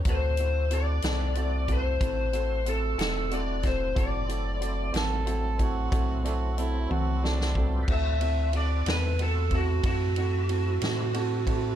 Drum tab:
CC |------------------------|------------------------|x-----------------------|
RD |------------------------|------------------------|--x-x-x-x-x-x-x-x-x-x-x-|
HH |x-x-x-x-x-x-x-x-x-x-x-x-|x-x-x-x-x-x-x-x-x-------|------------------------|
SD |------o-----------o---o-|------o-------------oo--|------o-----------o-----|
T1 |------------------------|------------------o-----|------------------------|
BD |o---------o-o---------o-|o---------o-o---------o-|o---------o-o---------o-|